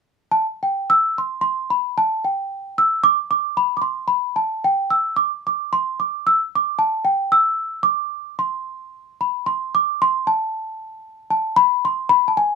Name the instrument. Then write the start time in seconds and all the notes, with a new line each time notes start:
celesta
0.32 A5
0.63 G5
0.90 E6
1.18 C6
1.41 C6
1.70 B5
1.98 A5
2.25 G5
2.78 E6
3.04 D6
3.31 D6
3.57 B5
3.77 D6
3.82 C6
4.08 B5
4.36 A5
4.64 G5
4.90 E6
5.16 D6
5.47 D6
5.73 C6
6.00 D6
6.27 E6
6.55 D6
6.79 A5
7.05 G5
7.32 E6
7.83 D6
8.39 C6
9.21 B5
9.46 C6
9.75 D6
10.02 C6
10.27 A5
11.30 A5
11.56 B5
11.85 C6
12.09 B5
12.28 A5
12.37 G#5